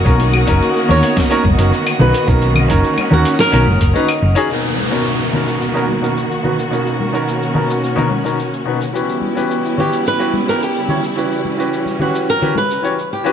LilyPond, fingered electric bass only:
\new Staff \with { instrumentName = "Fingered electric bass" } { \clef bass \time 4/4 \key b \major \tempo 4 = 108 b,,8. fis,,16 r8 dis,16 r8. fis,,16 fis,,16 r8 b,,16 r16 | b,,8. fis,,16 r8 dis,16 r8 b,,16 fis,,16 fis,,16 r8 fis,,16 r16 | r1 | r1 |
r1 | r1 | }